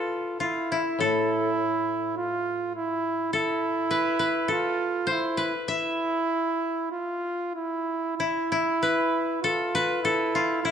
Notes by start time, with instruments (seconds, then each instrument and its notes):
Already playing: trumpet F4, koto A4 B4
0.40 trumpet E4, koto F4
0.72 koto E4
0.99 koto A2 A4, trumpet E4
2.17 trumpet F4
2.75 trumpet E4
3.33 trumpet E4, koto A4
3.91 koto B4
4.19 koto B4
4.48 trumpet F4, koto A4
5.07 koto C5
5.11 trumpet E4
5.37 koto B4
5.68 trumpet E4, koto E5
6.92 trumpet F4
7.55 trumpet E4
8.17 trumpet E4, koto E4
8.52 koto E4
8.83 koto B4
9.42 trumpet F4, koto A4
9.75 koto B4
10.02 trumpet E4, koto A4
10.35 koto F4
10.63 trumpet E4, koto E4